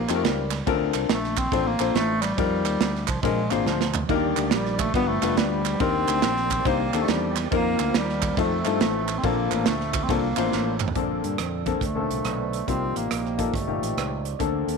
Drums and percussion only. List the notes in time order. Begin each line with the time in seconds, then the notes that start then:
0.09 clap, ride
0.25 snare, ride
0.51 snare, clap, ride
0.67 kick, ride
0.94 clap, ride
1.09 snare, ride
1.24 snare
1.37 kick, clap, ride
1.52 kick, ride
1.80 clap, ride
1.95 snare, ride
2.23 snare, clap, ride
2.38 kick, ride
2.66 clap, ride
2.81 snare, ride
2.96 snare
3.08 kick, clap, ride
3.23 kick, ride
3.51 clap, ride
3.66 snare
3.81 snare
3.94 clap, floor tom
4.09 kick, ride
4.37 clap, ride
4.51 snare, ride
4.66 snare
4.79 kick, clap, ride
4.94 kick, ride
5.23 clap, ride
5.37 snare, ride
5.65 snare, clap, ride
5.80 kick, ride
6.07 clap, ride
6.22 snare, ride
6.37 snare
6.50 kick, clap, ride
6.65 kick, ride
6.94 clap, ride
7.08 snare, ride
7.36 snare, clap, ride
7.52 kick, ride
7.80 clap, ride
7.94 snare, ride
8.09 snare
8.22 kick, clap, ride
8.37 kick, ride
8.65 clap, ride
8.80 snare, ride
9.08 clap, ride
9.24 kick, ride
9.51 clap, ride
9.66 snare, ride
9.81 snare
9.93 kick, clap, ride
10.09 kick, ride
10.37 clap, ride
10.52 snare
10.80 clap, mid tom
10.88 floor tom
10.95 kick, closed hi-hat
11.24 closed hi-hat
11.38 cross-stick, closed hi-hat
11.66 kick, closed hi-hat
11.81 kick, closed hi-hat
12.11 closed hi-hat
12.25 cross-stick, closed hi-hat
12.53 closed hi-hat
12.68 kick, closed hi-hat
12.96 closed hi-hat
13.11 cross-stick, closed hi-hat
13.26 cross-stick
13.39 kick, closed hi-hat
13.54 kick, closed hi-hat
13.83 closed hi-hat
13.98 cross-stick, closed hi-hat
14.25 closed hi-hat
14.40 kick, closed hi-hat
14.69 closed hi-hat